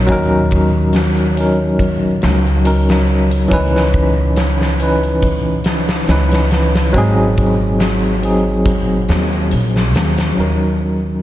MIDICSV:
0, 0, Header, 1, 4, 480
1, 0, Start_track
1, 0, Tempo, 857143
1, 49, Time_signature, 4, 2, 24, 8
1, 6284, End_track
2, 0, Start_track
2, 0, Title_t, "Tine electric piano"
2, 0, Program_c, 0, 4
2, 0, Control_c, 0, 64, 127
2, 0, Note_on_c, 0, 54, 74
2, 0, Note_on_c, 0, 61, 64
2, 0, Note_on_c, 0, 63, 63
2, 0, Note_on_c, 0, 70, 81
2, 36, Note_off_c, 0, 54, 0
2, 36, Note_on_c, 0, 54, 94
2, 48, Note_off_c, 0, 61, 0
2, 48, Note_on_c, 0, 61, 82
2, 58, Note_off_c, 0, 63, 0
2, 58, Note_on_c, 0, 63, 81
2, 66, Note_off_c, 0, 70, 0
2, 66, Note_on_c, 0, 70, 100
2, 737, Note_off_c, 0, 54, 0
2, 743, Note_off_c, 0, 61, 0
2, 748, Note_off_c, 0, 63, 0
2, 752, Note_off_c, 0, 70, 0
2, 757, Note_on_c, 0, 54, 66
2, 768, Note_on_c, 0, 61, 63
2, 775, Note_on_c, 0, 63, 63
2, 788, Note_on_c, 0, 70, 71
2, 1457, Note_off_c, 0, 54, 0
2, 1463, Note_off_c, 0, 61, 0
2, 1466, Note_off_c, 0, 63, 0
2, 1473, Note_off_c, 0, 70, 0
2, 1480, Note_on_c, 0, 54, 70
2, 1489, Note_on_c, 0, 61, 63
2, 1491, Note_on_c, 0, 63, 62
2, 1496, Note_on_c, 0, 70, 75
2, 1626, Note_off_c, 0, 54, 0
2, 1631, Note_off_c, 0, 61, 0
2, 1632, Note_off_c, 0, 63, 0
2, 1634, Note_off_c, 0, 70, 0
2, 1950, Note_on_c, 0, 52, 94
2, 1959, Note_on_c, 0, 61, 85
2, 1970, Note_on_c, 0, 63, 84
2, 1977, Control_c, 0, 64, 0
2, 1979, Note_on_c, 0, 71, 101
2, 2085, Control_c, 0, 64, 127
2, 2654, Note_off_c, 0, 52, 0
2, 2658, Note_off_c, 0, 61, 0
2, 2664, Note_off_c, 0, 63, 0
2, 2668, Note_off_c, 0, 71, 0
2, 2678, Note_on_c, 0, 52, 66
2, 2687, Note_on_c, 0, 61, 63
2, 2696, Note_on_c, 0, 63, 66
2, 2706, Note_on_c, 0, 71, 75
2, 3378, Note_off_c, 0, 52, 0
2, 3382, Note_off_c, 0, 61, 0
2, 3387, Note_off_c, 0, 63, 0
2, 3392, Note_off_c, 0, 71, 0
2, 3406, Note_on_c, 0, 52, 72
2, 3410, Note_on_c, 0, 61, 68
2, 3417, Note_on_c, 0, 63, 67
2, 3424, Note_on_c, 0, 71, 82
2, 3549, Note_off_c, 0, 52, 0
2, 3551, Note_off_c, 0, 61, 0
2, 3555, Note_off_c, 0, 63, 0
2, 3558, Note_off_c, 0, 71, 0
2, 3880, Note_on_c, 0, 54, 100
2, 3888, Note_on_c, 0, 60, 84
2, 3897, Control_c, 0, 64, 0
2, 3899, Note_on_c, 0, 63, 80
2, 3908, Note_on_c, 0, 68, 108
2, 3989, Control_c, 0, 64, 127
2, 4579, Note_off_c, 0, 54, 0
2, 4582, Note_off_c, 0, 60, 0
2, 4588, Note_off_c, 0, 63, 0
2, 4593, Note_off_c, 0, 68, 0
2, 4593, Note_on_c, 0, 54, 64
2, 4603, Note_on_c, 0, 60, 62
2, 4611, Note_on_c, 0, 63, 64
2, 4620, Note_on_c, 0, 68, 78
2, 5295, Note_off_c, 0, 54, 0
2, 5300, Note_off_c, 0, 60, 0
2, 5304, Note_off_c, 0, 63, 0
2, 5308, Note_off_c, 0, 68, 0
2, 5797, Note_on_c, 0, 54, 62
2, 5807, Note_on_c, 0, 61, 55
2, 5816, Control_c, 0, 64, 0
2, 5816, Note_on_c, 0, 63, 56
2, 5825, Note_on_c, 0, 70, 64
2, 5929, Control_c, 0, 64, 127
2, 6284, Note_off_c, 0, 54, 0
2, 6284, Note_off_c, 0, 61, 0
2, 6284, Note_off_c, 0, 63, 0
2, 6284, Note_off_c, 0, 70, 0
2, 6284, End_track
3, 0, Start_track
3, 0, Title_t, "Upright bass"
3, 0, Program_c, 1, 32
3, 52, Note_on_c, 1, 39, 86
3, 1230, Note_off_c, 1, 39, 0
3, 1252, Note_on_c, 1, 37, 108
3, 1950, Note_off_c, 1, 37, 0
3, 1972, Note_on_c, 1, 37, 92
3, 3390, Note_off_c, 1, 37, 0
3, 3409, Note_on_c, 1, 37, 89
3, 3868, Note_off_c, 1, 37, 0
3, 3890, Note_on_c, 1, 32, 101
3, 5090, Note_on_c, 1, 39, 96
3, 5099, Note_off_c, 1, 32, 0
3, 5330, Note_off_c, 1, 39, 0
3, 5333, Note_on_c, 1, 34, 97
3, 5573, Note_off_c, 1, 34, 0
3, 5573, Note_on_c, 1, 39, 95
3, 5785, Note_off_c, 1, 39, 0
3, 5815, Note_on_c, 1, 39, 69
3, 6284, Note_off_c, 1, 39, 0
3, 6284, End_track
4, 0, Start_track
4, 0, Title_t, "Drums"
4, 42, Note_on_c, 9, 42, 84
4, 49, Note_on_c, 9, 36, 117
4, 98, Note_off_c, 9, 42, 0
4, 105, Note_off_c, 9, 36, 0
4, 286, Note_on_c, 9, 42, 71
4, 292, Note_on_c, 9, 36, 91
4, 342, Note_off_c, 9, 42, 0
4, 348, Note_off_c, 9, 36, 0
4, 521, Note_on_c, 9, 42, 75
4, 531, Note_on_c, 9, 38, 96
4, 577, Note_off_c, 9, 42, 0
4, 587, Note_off_c, 9, 38, 0
4, 654, Note_on_c, 9, 42, 41
4, 710, Note_off_c, 9, 42, 0
4, 769, Note_on_c, 9, 42, 65
4, 825, Note_off_c, 9, 42, 0
4, 1004, Note_on_c, 9, 36, 95
4, 1005, Note_on_c, 9, 42, 72
4, 1060, Note_off_c, 9, 36, 0
4, 1061, Note_off_c, 9, 42, 0
4, 1242, Note_on_c, 9, 42, 59
4, 1249, Note_on_c, 9, 38, 106
4, 1298, Note_off_c, 9, 42, 0
4, 1305, Note_off_c, 9, 38, 0
4, 1382, Note_on_c, 9, 42, 40
4, 1438, Note_off_c, 9, 42, 0
4, 1486, Note_on_c, 9, 42, 85
4, 1542, Note_off_c, 9, 42, 0
4, 1619, Note_on_c, 9, 42, 59
4, 1623, Note_on_c, 9, 38, 98
4, 1675, Note_off_c, 9, 42, 0
4, 1679, Note_off_c, 9, 38, 0
4, 1720, Note_on_c, 9, 42, 41
4, 1776, Note_off_c, 9, 42, 0
4, 1856, Note_on_c, 9, 42, 74
4, 1912, Note_off_c, 9, 42, 0
4, 1968, Note_on_c, 9, 36, 108
4, 1968, Note_on_c, 9, 42, 77
4, 2024, Note_off_c, 9, 36, 0
4, 2024, Note_off_c, 9, 42, 0
4, 2107, Note_on_c, 9, 38, 62
4, 2163, Note_off_c, 9, 38, 0
4, 2205, Note_on_c, 9, 42, 66
4, 2207, Note_on_c, 9, 36, 91
4, 2261, Note_off_c, 9, 42, 0
4, 2263, Note_off_c, 9, 36, 0
4, 2444, Note_on_c, 9, 42, 82
4, 2450, Note_on_c, 9, 38, 114
4, 2500, Note_off_c, 9, 42, 0
4, 2506, Note_off_c, 9, 38, 0
4, 2583, Note_on_c, 9, 38, 53
4, 2639, Note_off_c, 9, 38, 0
4, 2687, Note_on_c, 9, 42, 71
4, 2743, Note_off_c, 9, 42, 0
4, 2818, Note_on_c, 9, 42, 39
4, 2874, Note_off_c, 9, 42, 0
4, 2925, Note_on_c, 9, 42, 87
4, 2927, Note_on_c, 9, 36, 101
4, 2981, Note_off_c, 9, 42, 0
4, 2983, Note_off_c, 9, 36, 0
4, 3160, Note_on_c, 9, 42, 77
4, 3169, Note_on_c, 9, 38, 109
4, 3216, Note_off_c, 9, 42, 0
4, 3225, Note_off_c, 9, 38, 0
4, 3297, Note_on_c, 9, 38, 107
4, 3297, Note_on_c, 9, 42, 68
4, 3353, Note_off_c, 9, 38, 0
4, 3353, Note_off_c, 9, 42, 0
4, 3403, Note_on_c, 9, 42, 72
4, 3411, Note_on_c, 9, 38, 101
4, 3459, Note_off_c, 9, 42, 0
4, 3467, Note_off_c, 9, 38, 0
4, 3537, Note_on_c, 9, 42, 78
4, 3545, Note_on_c, 9, 38, 106
4, 3593, Note_off_c, 9, 42, 0
4, 3601, Note_off_c, 9, 38, 0
4, 3645, Note_on_c, 9, 42, 80
4, 3652, Note_on_c, 9, 38, 95
4, 3701, Note_off_c, 9, 42, 0
4, 3708, Note_off_c, 9, 38, 0
4, 3783, Note_on_c, 9, 38, 107
4, 3783, Note_on_c, 9, 42, 71
4, 3839, Note_off_c, 9, 38, 0
4, 3839, Note_off_c, 9, 42, 0
4, 3888, Note_on_c, 9, 36, 110
4, 3888, Note_on_c, 9, 42, 92
4, 3944, Note_off_c, 9, 36, 0
4, 3944, Note_off_c, 9, 42, 0
4, 4130, Note_on_c, 9, 42, 62
4, 4132, Note_on_c, 9, 36, 93
4, 4186, Note_off_c, 9, 42, 0
4, 4188, Note_off_c, 9, 36, 0
4, 4369, Note_on_c, 9, 42, 82
4, 4370, Note_on_c, 9, 38, 97
4, 4425, Note_off_c, 9, 42, 0
4, 4426, Note_off_c, 9, 38, 0
4, 4502, Note_on_c, 9, 42, 47
4, 4558, Note_off_c, 9, 42, 0
4, 4611, Note_on_c, 9, 42, 62
4, 4667, Note_off_c, 9, 42, 0
4, 4848, Note_on_c, 9, 36, 106
4, 4848, Note_on_c, 9, 42, 85
4, 4904, Note_off_c, 9, 36, 0
4, 4904, Note_off_c, 9, 42, 0
4, 5088, Note_on_c, 9, 42, 66
4, 5097, Note_on_c, 9, 38, 112
4, 5144, Note_off_c, 9, 42, 0
4, 5153, Note_off_c, 9, 38, 0
4, 5223, Note_on_c, 9, 42, 39
4, 5279, Note_off_c, 9, 42, 0
4, 5327, Note_on_c, 9, 42, 88
4, 5383, Note_off_c, 9, 42, 0
4, 5466, Note_on_c, 9, 38, 46
4, 5522, Note_off_c, 9, 38, 0
4, 5570, Note_on_c, 9, 42, 82
4, 5577, Note_on_c, 9, 38, 100
4, 5626, Note_off_c, 9, 42, 0
4, 5633, Note_off_c, 9, 38, 0
4, 5700, Note_on_c, 9, 42, 76
4, 5704, Note_on_c, 9, 38, 95
4, 5756, Note_off_c, 9, 42, 0
4, 5760, Note_off_c, 9, 38, 0
4, 6284, End_track
0, 0, End_of_file